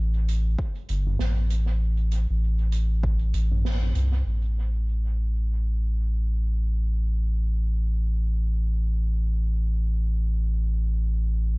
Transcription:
0.00 0.56 A1 loud
0.29 closed hi-hat medium
0.59 kick medium
0.89 1.17 G1 loud
0.89 closed hi-hat medium
1.07 mid tom medium
1.19 2.26 A1 medium
1.19 snare medium
1.50 closed hi-hat medium
2.12 closed hi-hat medium
2.30 3.33 A1 medium
2.72 closed hi-hat medium
3.03 kick loud
3.34 3.93 A1 loud
3.34 closed hi-hat medium
3.51 mid tom medium
3.65 snare medium
3.83 mid tom medium
3.95 4.23 C2 medium
3.95 closed hi-hat medium
4.26 11.58 A1 medium

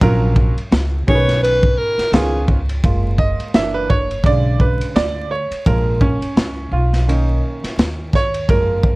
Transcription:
0.01 0.54 A#1 loud
0.01 0.53 F#3 medium
0.01 0.54 C#4 medium
0.01 0.54 F4 medium
0.01 0.54 A#4 loud
0.01 kick loud
0.01 ride medium
0.36 kick medium
0.57 muted upright bass stroke soft
0.57 ride medium
0.71 1.05 C#2 medium
0.71 snare loud
0.71 hi-hat pedal soft
0.71 ride medium
1.07 1.75 B1 medium
1.07 1.94 D#3 medium
1.07 1.94 B3 medium
1.07 1.95 C#4 medium
1.07 1.15 G#4 medium
1.07 1.41 C#5 loud
1.07 kick loud
1.15 1.98 B4 medium
1.28 snare soft
1.28 ride medium
1.43 1.80 B4 loud
1.43 ride medium
1.63 kick medium
1.78 2.15 A#4 medium
1.98 muted upright bass stroke medium
1.98 snare soft
1.98 ride medium
2.12 2.80 C#2 loud
2.12 2.57 D#3 medium
2.12 2.57 B3 medium
2.12 2.57 C#4 medium
2.12 2.57 F4 medium
2.12 2.49 G#4 medium
2.12 snare loud
2.12 hi-hat pedal medium
2.12 ride medium
2.48 kick medium
2.69 ride medium
2.84 3.37 F#1 loud
2.84 3.51 G#3 medium
2.84 3.51 A#3 medium
2.84 3.51 F4 medium
2.84 kick loud
2.84 ride medium
3.18 3.55 D#5 loud
3.18 kick medium
3.39 muted upright bass stroke soft
3.39 ride medium
3.54 4.21 F#1 medium
3.54 4.03 E3 medium
3.54 4.04 A#3 soft
3.54 4.04 D4 medium
3.54 3.74 E5 loud
3.54 snare loud
3.54 hi-hat pedal soft
3.54 ride medium
3.74 3.90 B4 medium
3.90 4.23 C#5 loud
3.90 kick medium
4.11 ride medium
4.24 4.77 B1 loud
4.24 5.28 C#3 medium
4.24 5.27 D3 medium
4.24 5.27 G#3 soft
4.24 4.62 D5 loud
4.24 kick loud
4.24 ride medium
4.60 4.97 B4 medium
4.60 kick medium
4.80 muted upright bass stroke soft
4.80 ride medium
4.95 5.48 D2 medium
4.95 5.29 D5 loud
4.95 snare loud
4.95 hi-hat pedal medium
4.95 ride medium
5.31 5.64 C#5 medium
5.51 muted upright bass stroke soft
5.51 ride medium
5.66 6.19 A#1 loud
5.66 6.15 F3 medium
5.66 6.15 G#3 soft
5.66 6.16 A#3 medium
5.66 5.99 A#4 medium
5.66 kick loud
5.66 ride medium
6.01 6.74 C#4 medium
6.01 kick medium
6.21 muted upright bass stroke soft
6.21 ride medium
6.36 6.70 C#2 medium
6.36 snare loud
6.36 hi-hat pedal soft
6.36 ride medium
6.71 7.39 B1 medium
6.71 7.09 F4 medium
6.93 snare soft
6.93 ride medium
7.07 8.09 D#3 medium
7.07 8.10 A#3 soft
7.07 8.10 C#4 medium
7.07 7.41 D#4 medium
7.07 ride medium
7.63 muted upright bass stroke soft
7.63 snare soft
7.63 ride medium
7.78 8.45 D#2 medium
7.78 snare loud
7.78 hi-hat pedal soft
7.78 ride medium
8.13 8.51 C#5 loud
8.13 kick medium
8.13 snare soft
8.34 ride medium
8.48 8.96 F#1 medium
8.48 8.96 F3 medium
8.48 8.96 G#3 medium
8.48 8.96 A#3 medium
8.48 8.96 A#4 loud
8.48 kick loud
8.48 ride medium
8.83 kick medium

